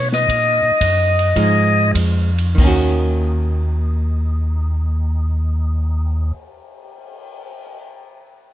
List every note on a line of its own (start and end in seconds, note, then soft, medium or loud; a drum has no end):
0.00 0.27 B2 medium
0.12 1.92 D#5 medium
0.12 snare soft
0.28 0.61 A#2 medium
0.28 kick soft
0.28 ride medium
0.63 0.72 A#2 soft
0.81 1.34 F#2 medium
0.81 kick soft
0.81 hi-hat pedal medium
0.81 ride medium
1.19 ride soft
1.36 1.93 G#2 medium
1.36 2.29 F3 soft
1.36 2.29 G#3 soft
1.36 2.29 D#4 medium
1.36 kick soft
1.36 ride medium
1.95 2.56 F2 medium
1.95 kick soft
1.95 hi-hat pedal medium
1.95 ride medium
2.38 ride soft
2.55 6.32 D#2 medium
2.55 6.33 D#3 medium
2.55 kick soft
2.55 crash medium
2.59 6.38 A#3 medium
2.64 6.42 C#4 medium
2.64 6.46 F#4 medium
3.03 cymbal swell soft